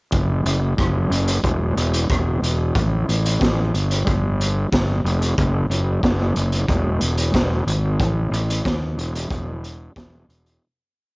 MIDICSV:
0, 0, Header, 1, 3, 480
1, 0, Start_track
1, 0, Tempo, 656455
1, 86, Time_signature, 4, 2, 24, 8
1, 8157, End_track
2, 0, Start_track
2, 0, Title_t, "Fingered electric bass"
2, 0, Program_c, 0, 33
2, 91, Note_on_c, 0, 30, 77
2, 300, Note_off_c, 0, 30, 0
2, 330, Note_on_c, 0, 30, 71
2, 539, Note_off_c, 0, 30, 0
2, 578, Note_on_c, 0, 30, 81
2, 784, Note_off_c, 0, 30, 0
2, 806, Note_on_c, 0, 30, 72
2, 1017, Note_off_c, 0, 30, 0
2, 1047, Note_on_c, 0, 28, 78
2, 1257, Note_off_c, 0, 28, 0
2, 1290, Note_on_c, 0, 28, 77
2, 1499, Note_off_c, 0, 28, 0
2, 1534, Note_on_c, 0, 28, 81
2, 1741, Note_off_c, 0, 28, 0
2, 1770, Note_on_c, 0, 28, 74
2, 1979, Note_off_c, 0, 28, 0
2, 2013, Note_on_c, 0, 33, 81
2, 2220, Note_off_c, 0, 33, 0
2, 2259, Note_on_c, 0, 33, 75
2, 2463, Note_off_c, 0, 33, 0
2, 2498, Note_on_c, 0, 33, 82
2, 2703, Note_off_c, 0, 33, 0
2, 2736, Note_on_c, 0, 31, 77
2, 2941, Note_off_c, 0, 31, 0
2, 2980, Note_on_c, 0, 31, 80
2, 3394, Note_off_c, 0, 31, 0
2, 3449, Note_on_c, 0, 31, 78
2, 3657, Note_off_c, 0, 31, 0
2, 3688, Note_on_c, 0, 29, 74
2, 3896, Note_off_c, 0, 29, 0
2, 3930, Note_on_c, 0, 30, 81
2, 4137, Note_off_c, 0, 30, 0
2, 4165, Note_on_c, 0, 30, 78
2, 4374, Note_off_c, 0, 30, 0
2, 4409, Note_on_c, 0, 30, 83
2, 4617, Note_off_c, 0, 30, 0
2, 4654, Note_on_c, 0, 30, 75
2, 4859, Note_off_c, 0, 30, 0
2, 4890, Note_on_c, 0, 28, 76
2, 5097, Note_off_c, 0, 28, 0
2, 5134, Note_on_c, 0, 28, 79
2, 5339, Note_off_c, 0, 28, 0
2, 5372, Note_on_c, 0, 28, 77
2, 5578, Note_off_c, 0, 28, 0
2, 5606, Note_on_c, 0, 32, 78
2, 5815, Note_off_c, 0, 32, 0
2, 5845, Note_on_c, 0, 33, 83
2, 6054, Note_off_c, 0, 33, 0
2, 6077, Note_on_c, 0, 33, 78
2, 6290, Note_off_c, 0, 33, 0
2, 6329, Note_on_c, 0, 39, 80
2, 6537, Note_off_c, 0, 39, 0
2, 6557, Note_on_c, 0, 28, 80
2, 6770, Note_off_c, 0, 28, 0
2, 6802, Note_on_c, 0, 28, 82
2, 7224, Note_off_c, 0, 28, 0
2, 7284, Note_on_c, 0, 28, 75
2, 7494, Note_off_c, 0, 28, 0
2, 7520, Note_on_c, 0, 28, 71
2, 7732, Note_off_c, 0, 28, 0
2, 8157, End_track
3, 0, Start_track
3, 0, Title_t, "Drums"
3, 85, Note_on_c, 9, 42, 54
3, 88, Note_on_c, 9, 36, 97
3, 158, Note_off_c, 9, 42, 0
3, 161, Note_off_c, 9, 36, 0
3, 334, Note_on_c, 9, 42, 57
3, 407, Note_off_c, 9, 42, 0
3, 572, Note_on_c, 9, 36, 94
3, 577, Note_on_c, 9, 42, 53
3, 585, Note_on_c, 9, 37, 86
3, 646, Note_off_c, 9, 36, 0
3, 650, Note_off_c, 9, 42, 0
3, 658, Note_off_c, 9, 37, 0
3, 817, Note_on_c, 9, 42, 54
3, 891, Note_off_c, 9, 42, 0
3, 933, Note_on_c, 9, 42, 60
3, 1006, Note_off_c, 9, 42, 0
3, 1052, Note_on_c, 9, 36, 89
3, 1053, Note_on_c, 9, 42, 59
3, 1125, Note_off_c, 9, 36, 0
3, 1126, Note_off_c, 9, 42, 0
3, 1297, Note_on_c, 9, 42, 51
3, 1370, Note_off_c, 9, 42, 0
3, 1415, Note_on_c, 9, 42, 59
3, 1488, Note_off_c, 9, 42, 0
3, 1533, Note_on_c, 9, 36, 98
3, 1540, Note_on_c, 9, 42, 55
3, 1548, Note_on_c, 9, 37, 92
3, 1607, Note_off_c, 9, 36, 0
3, 1613, Note_off_c, 9, 42, 0
3, 1621, Note_off_c, 9, 37, 0
3, 1782, Note_on_c, 9, 42, 56
3, 1855, Note_off_c, 9, 42, 0
3, 2013, Note_on_c, 9, 36, 101
3, 2015, Note_on_c, 9, 42, 59
3, 2086, Note_off_c, 9, 36, 0
3, 2089, Note_off_c, 9, 42, 0
3, 2260, Note_on_c, 9, 42, 50
3, 2334, Note_off_c, 9, 42, 0
3, 2381, Note_on_c, 9, 42, 56
3, 2454, Note_off_c, 9, 42, 0
3, 2494, Note_on_c, 9, 36, 89
3, 2500, Note_on_c, 9, 42, 50
3, 2508, Note_on_c, 9, 38, 87
3, 2567, Note_off_c, 9, 36, 0
3, 2573, Note_off_c, 9, 42, 0
3, 2581, Note_off_c, 9, 38, 0
3, 2739, Note_on_c, 9, 42, 50
3, 2813, Note_off_c, 9, 42, 0
3, 2858, Note_on_c, 9, 42, 57
3, 2931, Note_off_c, 9, 42, 0
3, 2976, Note_on_c, 9, 36, 97
3, 2978, Note_on_c, 9, 42, 48
3, 3049, Note_off_c, 9, 36, 0
3, 3051, Note_off_c, 9, 42, 0
3, 3223, Note_on_c, 9, 42, 49
3, 3296, Note_off_c, 9, 42, 0
3, 3455, Note_on_c, 9, 36, 96
3, 3456, Note_on_c, 9, 42, 54
3, 3464, Note_on_c, 9, 38, 99
3, 3528, Note_off_c, 9, 36, 0
3, 3529, Note_off_c, 9, 42, 0
3, 3537, Note_off_c, 9, 38, 0
3, 3702, Note_on_c, 9, 42, 49
3, 3775, Note_off_c, 9, 42, 0
3, 3816, Note_on_c, 9, 42, 50
3, 3889, Note_off_c, 9, 42, 0
3, 3933, Note_on_c, 9, 36, 101
3, 3936, Note_on_c, 9, 42, 58
3, 4006, Note_off_c, 9, 36, 0
3, 4009, Note_off_c, 9, 42, 0
3, 4174, Note_on_c, 9, 42, 55
3, 4248, Note_off_c, 9, 42, 0
3, 4410, Note_on_c, 9, 36, 88
3, 4413, Note_on_c, 9, 42, 50
3, 4421, Note_on_c, 9, 38, 84
3, 4483, Note_off_c, 9, 36, 0
3, 4486, Note_off_c, 9, 42, 0
3, 4494, Note_off_c, 9, 38, 0
3, 4651, Note_on_c, 9, 42, 53
3, 4724, Note_off_c, 9, 42, 0
3, 4770, Note_on_c, 9, 42, 57
3, 4843, Note_off_c, 9, 42, 0
3, 4889, Note_on_c, 9, 36, 91
3, 4889, Note_on_c, 9, 42, 56
3, 4962, Note_off_c, 9, 36, 0
3, 4962, Note_off_c, 9, 42, 0
3, 5125, Note_on_c, 9, 42, 54
3, 5198, Note_off_c, 9, 42, 0
3, 5247, Note_on_c, 9, 42, 60
3, 5320, Note_off_c, 9, 42, 0
3, 5367, Note_on_c, 9, 36, 100
3, 5370, Note_on_c, 9, 42, 58
3, 5378, Note_on_c, 9, 38, 97
3, 5440, Note_off_c, 9, 36, 0
3, 5443, Note_off_c, 9, 42, 0
3, 5451, Note_off_c, 9, 38, 0
3, 5614, Note_on_c, 9, 42, 58
3, 5687, Note_off_c, 9, 42, 0
3, 5847, Note_on_c, 9, 36, 90
3, 5853, Note_on_c, 9, 42, 61
3, 5920, Note_off_c, 9, 36, 0
3, 5926, Note_off_c, 9, 42, 0
3, 6095, Note_on_c, 9, 42, 59
3, 6168, Note_off_c, 9, 42, 0
3, 6216, Note_on_c, 9, 42, 61
3, 6289, Note_off_c, 9, 42, 0
3, 6327, Note_on_c, 9, 36, 91
3, 6330, Note_on_c, 9, 42, 53
3, 6338, Note_on_c, 9, 38, 84
3, 6400, Note_off_c, 9, 36, 0
3, 6403, Note_off_c, 9, 42, 0
3, 6411, Note_off_c, 9, 38, 0
3, 6572, Note_on_c, 9, 42, 54
3, 6645, Note_off_c, 9, 42, 0
3, 6694, Note_on_c, 9, 42, 59
3, 6767, Note_off_c, 9, 42, 0
3, 6804, Note_on_c, 9, 36, 93
3, 6809, Note_on_c, 9, 42, 51
3, 6877, Note_off_c, 9, 36, 0
3, 6882, Note_off_c, 9, 42, 0
3, 7050, Note_on_c, 9, 42, 47
3, 7123, Note_off_c, 9, 42, 0
3, 7284, Note_on_c, 9, 36, 95
3, 7289, Note_on_c, 9, 42, 53
3, 7297, Note_on_c, 9, 38, 97
3, 7357, Note_off_c, 9, 36, 0
3, 7362, Note_off_c, 9, 42, 0
3, 7370, Note_off_c, 9, 38, 0
3, 7530, Note_on_c, 9, 42, 49
3, 7603, Note_off_c, 9, 42, 0
3, 7649, Note_on_c, 9, 42, 50
3, 7722, Note_off_c, 9, 42, 0
3, 8157, End_track
0, 0, End_of_file